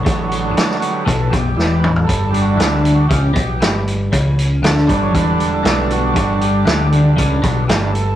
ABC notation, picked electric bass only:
X:1
M:4/4
L:1/8
Q:1/4=118
K:Glyd
V:1 name="Picked electric bass" clef=bass
A,,,2 z2 B,,, B,,,, E,,,2 | G,,,2 D,,2 C,, B,,, G,,,2 | C,,2 D,, G,,, E,,,2 B,,,2 | G,,,2 D,,2 C,, B,,, G,,,2 |]